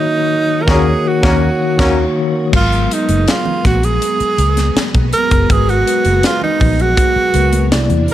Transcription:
Already playing: tine electric piano D#3 A#3 F#4 C#5, tenor saxophone D#4, string machine A#4 F#5 C#6 D#6
0.63 tine electric piano D#3 A#3, tenor saxophone A#4
0.67 fingered electric bass D#2, trombone section F#3 A#3 C#4, clean electric guitar C#4 A#4, tenor saxophone G#4, tine electric piano C#5, kick, snare
0.74 tine electric piano F#4
1.08 tenor saxophone F#4
1.21 fingered electric bass D#2, tine electric piano D#3 A#3 C#5, trombone section F#3 A#3 C#4, clean electric guitar C#4 A#4, kick, snare
1.30 tine electric piano F#4
1.77 fingered electric bass D#2, tine electric piano D#3 A#3 C#5, trombone section F#3 A#3 C#4, clean electric guitar C#4 A#4, kick, snare, crash
1.86 tine electric piano F#4
2.52 fingered electric bass G#1, string machine F#3 B3 G#4 A#5, tine electric piano F#3 G#3 B3 A#4, kick, crash, muted conga, low conga
2.56 tenor saxophone F4
2.72 closed hi-hat
2.91 tenor saxophone D#4, closed hi-hat, muted conga
3.09 fingered electric bass F#1, closed hi-hat, high conga
3.27 tenor saxophone F4, snare, closed hi-hat, muted conga
3.45 low conga
3.65 fingered electric bass A#1, tenor saxophone F#4, kick, snare, closed hi-hat, muted conga, high conga, low conga
3.83 tenor saxophone G#4, closed hi-hat
4.01 closed hi-hat, muted conga
4.20 muted fingered electric bass stroke, closed hi-hat
4.38 fingered electric bass C#2, closed hi-hat, muted conga
4.57 snare, closed hi-hat, high conga
4.75 muted fingered electric bass stroke, snare, closed hi-hat, muted conga, high conga
4.94 fingered electric bass B1, kick, closed hi-hat, high conga
5.13 tenor saxophone A#4, closed hi-hat, muted conga
5.31 fingered electric bass F#1, kick, closed hi-hat
5.48 fingered electric bass G#1, tine electric piano G#3 F#4 A#4 B4, tenor saxophone G#4, kick, closed hi-hat, muted conga, low conga
5.69 tenor saxophone F#4, closed hi-hat
5.87 closed hi-hat
6.05 fingered electric bass F#1, closed hi-hat, high conga
6.23 tenor saxophone F4, snare, closed hi-hat
6.42 tenor saxophone D#4, low conga
6.60 fingered electric bass A#1, kick, open hi-hat, muted conga, low conga
6.80 tenor saxophone F#4, closed hi-hat
6.97 kick, closed hi-hat, muted conga
7.16 muted fingered electric bass stroke
7.34 fingered electric bass C#2, tine electric piano G#3 F#4 A#4 B4, closed hi-hat, muted conga
7.53 closed hi-hat, high conga
7.71 fingered electric bass C2, tine electric piano C3 A#3 E4 D5, string machine D3 A#3 C4 E4, snare, closed hi-hat, muted conga, high conga
7.90 fingered electric bass E2, closed hi-hat, high conga
8.08 open hi-hat, muted conga

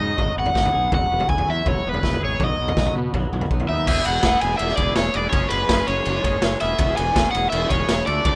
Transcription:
Already playing: clean electric guitar F#3 B3 D#4 F#4
0.00 fingered electric bass G#2, overdriven electric guitar D#5
0.16 fingered electric bass G#1, clean electric guitar F#3, kick, floor tom
0.35 fingered electric bass G#1, clean electric guitar B3, overdriven electric guitar F#5
0.46 floor tom
0.54 fingered electric bass G#1, clean electric guitar D#4, kick, snare
0.65 floor tom
0.72 fingered electric bass B1, clean electric guitar G#4
0.91 fingered electric bass E1, clean electric guitar F#3, overdriven electric guitar F#5, kick, floor tom
1.09 fingered electric bass E1, clean electric guitar B3
1.20 floor tom
1.29 fingered electric bass E1, clean electric guitar F#3, overdriven electric guitar G#5, kick
1.38 floor tom
1.47 fingered electric bass E2, clean electric guitar E4, overdriven electric guitar E5
1.65 fingered electric bass E1, clean electric guitar F#3, overdriven electric guitar C#5, kick, floor tom
1.85 fingered electric bass E1, clean electric guitar B3
1.89 overdriven electric guitar B4
1.94 floor tom
2.01 fingered electric bass E1, clean electric guitar E4, kick, snare
2.13 floor tom
2.20 fingered electric bass G#1, clean electric guitar G#4
2.25 overdriven electric guitar C#5
2.39 fingered electric bass B1, clean electric guitar F#3, kick, floor tom
2.44 overdriven electric guitar D#5
2.59 fingered electric bass B1, clean electric guitar F#3
2.68 floor tom
2.76 fingered electric bass B1, clean electric guitar F#3, kick, snare, mid tom
2.86 floor tom
2.95 fingered electric bass B2, clean electric guitar B3
3.14 fingered electric bass B1, clean electric guitar F#3, kick, floor tom
3.33 fingered electric bass B1, clean electric guitar F#3, mid tom
3.41 floor tom
3.51 fingered electric bass B1, clean electric guitar B3, kick
3.60 floor tom
3.69 fingered electric bass D#2, clean electric guitar D#4, overdriven electric guitar E5
3.86 fingered electric bass E1, clean electric guitar E3 B3 E4 G#4, overdriven electric guitar E5, kick, crash
4.05 fingered electric bass E1, overdriven electric guitar F#5, ride
4.22 fingered electric bass E1, clean electric guitar E3 B3 E4 G#4, kick, snare, ride
4.40 fingered electric bass E1, clean electric guitar B3 E4 G#4, overdriven electric guitar G#5, ride
4.58 fingered electric bass E1, overdriven electric guitar E5, ride
4.68 snare
4.76 fingered electric bass E1, clean electric guitar E4 G#4, overdriven electric guitar D5, kick, ride
4.80 clean electric guitar B3
4.96 fingered electric bass E1, overdriven electric guitar C#5, snare, ride
5.14 fingered electric bass E1, clean electric guitar B3 E4 G#4, overdriven electric guitar D5, ride
5.30 fingered electric bass F#1, clean electric guitar F#3 G#3 C#4 G#4, overdriven electric guitar C#5, kick, ride
5.49 fingered electric bass F#1, overdriven electric guitar B4, ride
5.69 fingered electric bass F#1, clean electric guitar F#3 G#3 C#4 G#4, kick, snare, ride
5.87 fingered electric bass F#1, clean electric guitar G#3 C#4 G#4, overdriven electric guitar C#5, ride
6.05 fingered electric bass F#1, ride
6.24 fingered electric bass F#1, clean electric guitar G#3 C#4 G#4, kick, ride
6.42 fingered electric bass F#1, snare, ride
6.60 fingered electric bass E1, clean electric guitar E3 B3 C#4 G#4, overdriven electric guitar E5, ride
6.77 fingered electric bass E1, clean electric guitar E3 B3 C#4 G#4, kick, ride
6.97 fingered electric bass E1, overdriven electric guitar G#5, ride
7.14 fingered electric bass E1, clean electric guitar E3 B3 C#4 G#4, kick, snare, ride
7.31 fingered electric bass E1, clean electric guitar C#4 G#4, overdriven electric guitar F#5, ride
7.36 clean electric guitar B3
7.50 fingered electric bass E1, overdriven electric guitar E5, ride
7.69 fingered electric bass E1, clean electric guitar B3 C#4 G#4, overdriven electric guitar C#5, kick, ride
7.89 fingered electric bass E1, snare, ride
8.06 fingered electric bass D2, clean electric guitar E3 A3 D4 A4, overdriven electric guitar D5, ride
8.24 fingered electric bass D2, clean electric guitar E3 A3 D4 A4, overdriven electric guitar D5, kick, ride

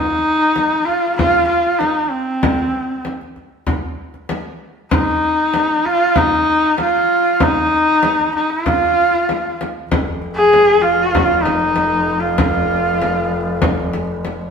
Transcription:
Already playing: horsehead fiddle D#4
0.56 frame drum
0.72 frame drum
0.85 horsehead fiddle F4, frame drum
1.17 horsehead fiddle F4, frame drum
1.48 horsehead fiddle F4
1.65 frame drum
1.79 horsehead fiddle D#4, frame drum
2.10 horsehead fiddle C4
2.43 frame drum
3.05 frame drum
3.21 frame drum
3.36 frame drum
3.67 frame drum
4.14 frame drum
4.29 frame drum
4.91 horsehead fiddle D#4, frame drum
5.54 frame drum
5.70 frame drum
5.85 horsehead fiddle F4, frame drum
6.16 horsehead fiddle D#4, frame drum
6.63 frame drum
6.78 horsehead fiddle F4, frame drum
7.40 horsehead fiddle D#4, frame drum
8.03 frame drum
8.19 frame drum
8.34 horsehead fiddle D#4, frame drum
8.50 horsehead fiddle F4
8.66 frame drum
9.13 frame drum
9.29 frame drum
9.61 frame drum
9.90 double bass F1, frame drum
10.22 frame drum
10.36 horsehead fiddle G#4
10.53 frame drum
10.81 horsehead fiddle F4, frame drum
11.15 frame drum
11.43 horsehead fiddle D#4, frame drum
11.76 frame drum
12.07 frame drum
12.20 horsehead fiddle F4
12.38 frame drum
12.71 frame drum
13.02 frame drum
13.32 frame drum
13.62 frame drum
13.94 frame drum
14.25 frame drum

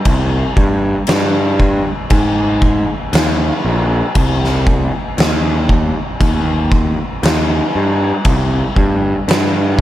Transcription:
0.05 picked electric bass C2, kick, crash
0.57 picked electric bass G2, kick
1.07 picked electric bass G2, snare, crash
1.60 kick
2.10 picked electric bass G#2, kick, crash
2.62 kick
3.13 picked electric bass D#2, snare, crash
3.64 picked electric bass A#1
4.15 picked electric bass C2, kick, crash
4.44 snare
4.67 kick
5.18 picked electric bass D#2, snare, crash
5.69 kick
6.21 picked electric bass D#2, kick, crash
6.72 kick
7.23 picked electric bass D#2, snare, crash
7.75 picked electric bass G2
8.25 picked electric bass C2, kick, crash
8.76 picked electric bass G2, kick
9.28 picked electric bass G2, snare, crash

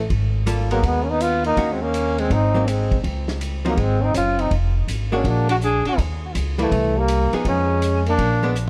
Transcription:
0.10 upright bass G#1, kick, ride
0.46 hollow-body jazz guitar G3 A#3 F4 A4, hi-hat pedal, ride
0.71 alto saxophone F#3, hollow-body jazz guitar G#3 B3 F#4 A#4, trombone A#3, ride
0.83 upright bass D#2, alto saxophone G#3, trombone B3, kick, ride
1.03 alto saxophone A#3, trombone C#4
1.10 alto saxophone B3, trombone D#4
1.20 alto saxophone B3, trombone F4, hi-hat pedal, ride
1.44 alto saxophone A#3, trombone D#4, ride
1.57 upright bass D#2, hollow-body jazz guitar D#3 A#3 C#4 F#4, kick, ride
1.72 alto saxophone G#3, trombone C4
1.82 alto saxophone A#3, trombone C#4
1.94 hi-hat pedal, ride
2.18 alto saxophone G#3, trombone C4, ride
2.30 upright bass G#1, alto saxophone C4, trombone D#4, kick, ride
2.54 hollow-body jazz guitar F#3 A#3 C4
2.68 alto saxophone G#3, trombone C4, hi-hat pedal, ride
2.91 upright bass C2, kick, ride
3.04 upright bass C#2, kick, ride
3.28 snare
3.41 hi-hat pedal, ride
3.65 hollow-body jazz guitar F3 C4 D#4, alto saxophone F#3, trombone A#3, ride
3.77 upright bass G#1, alto saxophone G#3, trombone C4, kick, ride
4.01 alto saxophone C4, trombone D#4
4.14 upright bass F#1, alto saxophone C#4, trombone F4, hi-hat pedal, ride
4.38 alto saxophone C4, trombone D#4, ride
4.51 upright bass F1, kick, ride
4.87 upright bass G#1, hi-hat pedal, ride
5.12 hollow-body jazz guitar G#3 D4 F#4, alto saxophone A#3, trombone C#4
5.23 upright bass A#1, alto saxophone A#3, kick, ride
5.28 trombone D4
5.49 alto saxophone D4, trombone F#4, ride
5.61 alto saxophone D4, trombone G#4, hi-hat pedal
5.85 alto saxophone D4, trombone F#4, muted upright bass stroke, ride
5.98 upright bass D#2, kick, ride
6.35 upright bass C#2, hi-hat pedal, ride
6.58 alto saxophone E3, hollow-body jazz guitar G3 A#3 E4, trombone A3, ride
6.71 upright bass C2, kick, ride
6.97 alto saxophone G3, trombone A#3
7.08 hi-hat pedal, ride
7.32 hollow-body jazz guitar F3 B3 D#4 G#4, muted upright bass stroke, ride
7.45 upright bass F2, alto saxophone G#3, trombone C#4, kick, ride
7.82 hi-hat pedal, ride
8.06 alto saxophone A#3, trombone D4, ride
8.18 upright bass A#1, kick, ride
8.43 hollow-body jazz guitar G#3 B3 D4
8.55 hi-hat pedal

